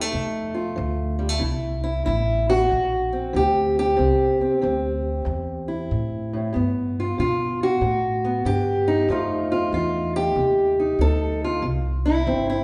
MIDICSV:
0, 0, Header, 1, 4, 480
1, 0, Start_track
1, 0, Tempo, 637620
1, 1074, Time_signature, 4, 2, 24, 8
1, 9514, End_track
2, 0, Start_track
2, 0, Title_t, "Steel-string acoustic guitar"
2, 0, Program_c, 0, 25
2, 0, Note_on_c, 0, 63, 79
2, 9, Note_on_c, 0, 57, 42
2, 89, Note_on_c, 0, 48, 61
2, 410, Note_on_c, 0, 65, 50
2, 437, Note_off_c, 0, 63, 0
2, 549, Note_off_c, 0, 48, 0
2, 571, Note_on_c, 0, 53, 63
2, 891, Note_off_c, 0, 57, 0
2, 894, Note_on_c, 0, 55, 48
2, 970, Note_off_c, 0, 55, 0
2, 970, Note_on_c, 0, 57, 43
2, 1030, Note_off_c, 0, 53, 0
2, 1045, Note_off_c, 0, 65, 0
2, 1047, Note_on_c, 0, 48, 70
2, 1053, Note_on_c, 0, 64, 53
2, 1063, Note_off_c, 0, 57, 0
2, 1379, Note_off_c, 0, 64, 0
2, 1382, Note_on_c, 0, 64, 74
2, 1509, Note_off_c, 0, 48, 0
2, 1540, Note_off_c, 0, 64, 0
2, 1542, Note_on_c, 0, 52, 56
2, 1549, Note_on_c, 0, 64, 87
2, 1870, Note_off_c, 0, 64, 0
2, 1879, Note_on_c, 0, 66, 99
2, 1997, Note_off_c, 0, 52, 0
2, 2028, Note_on_c, 0, 43, 64
2, 2354, Note_on_c, 0, 60, 47
2, 2481, Note_off_c, 0, 43, 0
2, 2509, Note_on_c, 0, 52, 70
2, 2521, Note_off_c, 0, 66, 0
2, 2532, Note_on_c, 0, 67, 98
2, 2843, Note_off_c, 0, 67, 0
2, 2853, Note_on_c, 0, 67, 95
2, 2962, Note_off_c, 0, 52, 0
2, 2977, Note_off_c, 0, 60, 0
2, 2984, Note_on_c, 0, 48, 73
2, 2988, Note_on_c, 0, 60, 50
2, 3311, Note_off_c, 0, 60, 0
2, 3321, Note_on_c, 0, 60, 42
2, 3441, Note_off_c, 0, 48, 0
2, 3468, Note_off_c, 0, 60, 0
2, 3474, Note_on_c, 0, 52, 55
2, 3479, Note_on_c, 0, 60, 44
2, 3926, Note_off_c, 0, 52, 0
2, 3952, Note_on_c, 0, 43, 69
2, 4273, Note_off_c, 0, 67, 0
2, 4276, Note_on_c, 0, 64, 42
2, 4405, Note_off_c, 0, 43, 0
2, 4768, Note_on_c, 0, 45, 55
2, 4902, Note_off_c, 0, 60, 0
2, 4914, Note_on_c, 0, 43, 64
2, 4921, Note_on_c, 0, 59, 45
2, 4922, Note_off_c, 0, 64, 0
2, 4928, Note_off_c, 0, 45, 0
2, 5267, Note_on_c, 0, 65, 72
2, 5366, Note_off_c, 0, 43, 0
2, 5406, Note_on_c, 0, 50, 55
2, 5410, Note_off_c, 0, 65, 0
2, 5419, Note_on_c, 0, 65, 90
2, 5728, Note_off_c, 0, 65, 0
2, 5745, Note_on_c, 0, 66, 95
2, 5852, Note_off_c, 0, 50, 0
2, 5885, Note_on_c, 0, 43, 70
2, 6199, Note_off_c, 0, 59, 0
2, 6207, Note_on_c, 0, 59, 49
2, 6331, Note_off_c, 0, 43, 0
2, 6366, Note_on_c, 0, 50, 65
2, 6368, Note_off_c, 0, 66, 0
2, 6371, Note_on_c, 0, 67, 107
2, 6682, Note_on_c, 0, 63, 77
2, 6812, Note_off_c, 0, 50, 0
2, 6827, Note_off_c, 0, 59, 0
2, 6837, Note_on_c, 0, 41, 67
2, 6844, Note_off_c, 0, 63, 0
2, 6846, Note_off_c, 0, 67, 0
2, 6849, Note_on_c, 0, 53, 51
2, 6852, Note_on_c, 0, 57, 44
2, 6860, Note_on_c, 0, 63, 48
2, 6864, Note_on_c, 0, 65, 49
2, 7155, Note_off_c, 0, 65, 0
2, 7164, Note_on_c, 0, 65, 74
2, 7286, Note_off_c, 0, 41, 0
2, 7323, Note_off_c, 0, 65, 0
2, 7325, Note_off_c, 0, 53, 0
2, 7332, Note_on_c, 0, 65, 81
2, 7642, Note_off_c, 0, 65, 0
2, 7649, Note_on_c, 0, 67, 102
2, 7799, Note_on_c, 0, 48, 66
2, 8118, Note_off_c, 0, 63, 0
2, 8128, Note_on_c, 0, 63, 47
2, 8246, Note_off_c, 0, 48, 0
2, 8284, Note_off_c, 0, 67, 0
2, 8287, Note_on_c, 0, 53, 64
2, 8290, Note_on_c, 0, 69, 107
2, 8599, Note_off_c, 0, 69, 0
2, 8615, Note_on_c, 0, 65, 79
2, 8729, Note_off_c, 0, 53, 0
2, 8742, Note_off_c, 0, 57, 0
2, 8743, Note_off_c, 0, 63, 0
2, 8749, Note_on_c, 0, 48, 70
2, 8768, Note_off_c, 0, 65, 0
2, 9075, Note_on_c, 0, 64, 79
2, 9199, Note_off_c, 0, 48, 0
2, 9233, Note_on_c, 0, 52, 60
2, 9237, Note_on_c, 0, 60, 44
2, 9396, Note_off_c, 0, 64, 0
2, 9407, Note_on_c, 0, 64, 77
2, 9514, Note_off_c, 0, 52, 0
2, 9514, Note_off_c, 0, 60, 0
2, 9514, Note_off_c, 0, 64, 0
2, 9514, End_track
3, 0, Start_track
3, 0, Title_t, "Upright bass"
3, 0, Program_c, 1, 32
3, 0, Note_on_c, 1, 39, 89
3, 93, Note_off_c, 1, 39, 0
3, 105, Note_on_c, 1, 41, 76
3, 575, Note_off_c, 1, 41, 0
3, 584, Note_on_c, 1, 38, 92
3, 1056, Note_off_c, 1, 38, 0
3, 1068, Note_on_c, 1, 36, 82
3, 1538, Note_off_c, 1, 36, 0
3, 1559, Note_on_c, 1, 33, 99
3, 2025, Note_off_c, 1, 33, 0
3, 2042, Note_on_c, 1, 34, 80
3, 2507, Note_off_c, 1, 34, 0
3, 2518, Note_on_c, 1, 38, 90
3, 2985, Note_off_c, 1, 38, 0
3, 3002, Note_on_c, 1, 36, 90
3, 3296, Note_off_c, 1, 36, 0
3, 3489, Note_on_c, 1, 38, 86
3, 3952, Note_off_c, 1, 38, 0
3, 3961, Note_on_c, 1, 40, 83
3, 4428, Note_off_c, 1, 40, 0
3, 4450, Note_on_c, 1, 45, 80
3, 4913, Note_off_c, 1, 45, 0
3, 4938, Note_on_c, 1, 43, 77
3, 5397, Note_off_c, 1, 43, 0
3, 5414, Note_on_c, 1, 47, 87
3, 5875, Note_off_c, 1, 47, 0
3, 5881, Note_on_c, 1, 45, 85
3, 6348, Note_off_c, 1, 45, 0
3, 6362, Note_on_c, 1, 43, 84
3, 6828, Note_off_c, 1, 43, 0
3, 6839, Note_on_c, 1, 41, 89
3, 7305, Note_off_c, 1, 41, 0
3, 7321, Note_on_c, 1, 40, 87
3, 7785, Note_off_c, 1, 40, 0
3, 7796, Note_on_c, 1, 39, 80
3, 8262, Note_off_c, 1, 39, 0
3, 8272, Note_on_c, 1, 38, 86
3, 8739, Note_off_c, 1, 38, 0
3, 8752, Note_on_c, 1, 36, 81
3, 9218, Note_off_c, 1, 36, 0
3, 9237, Note_on_c, 1, 31, 92
3, 9514, Note_off_c, 1, 31, 0
3, 9514, End_track
4, 0, Start_track
4, 0, Title_t, "Muted upright bass strokes"
4, 3318, Note_on_c, 9, 29, 41
4, 3393, Note_off_c, 9, 29, 0
4, 9514, End_track
0, 0, End_of_file